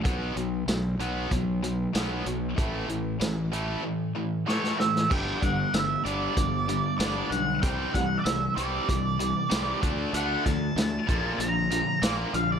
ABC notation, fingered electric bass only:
X:1
M:4/4
L:1/8
Q:1/4=95
K:Glyd
V:1 name="Fingered electric bass" clef=bass
B,,, B,,, B,,, B,,, B,,,2 B,,, B,,, | A,,, A,,, A,,,2 z4 | G,,, G,,, G,,, G,,, G,,,2 G,,, B,,, | =C,, C,, C,, C,, C,,2 C,, D,, |
D,, D,, D,, _B,,, B,,,2 B,,, B,,, |]